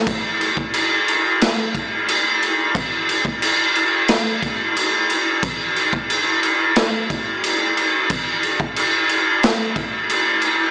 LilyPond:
\new DrumStaff \with { instrumentName = "Drums" } \drummode { \time 4/4 \tempo 4 = 90 <cymc bd>8 cymc16 bd16 cymc8 cymc8 <cymc sn>8 <cymc bd>8 cymc8 cymc8 | <cymc bd>8 cymc16 bd16 cymc8 cymc8 <cymc sn>8 <cymc bd>8 cymc8 cymc8 | <cymc bd>8 cymc16 bd16 cymc8 cymc8 <cymc sn>8 <cymc bd>8 cymc8 cymc8 | <cymc bd>8 cymc16 bd16 cymc8 cymc8 <cymc sn>8 <cymc bd>8 cymc8 cymc8 | }